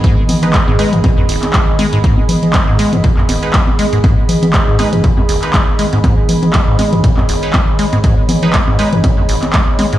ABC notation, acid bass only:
X:1
M:4/4
L:1/16
Q:"Swing 16ths" 1/4=120
K:G#m
V:1 name="Acid bass" clef=bass
G,, z3 G, G,, G, F,, A,, F,, G,,, z G, z G, G,, | G,, z3 G, G,, G, F,, A,, F,, G,,, z G, z G, G,, | G,, z3 G, G,, G, F,, A,, F,, G,,, z G, z G, G,, | G,, z3 G, G,, G, F,, A,, F,, G,,, z G, z G, G,, |
G,, z3 G, G,, G, F,, A,, F,, G,,, z G, z G, G,, |]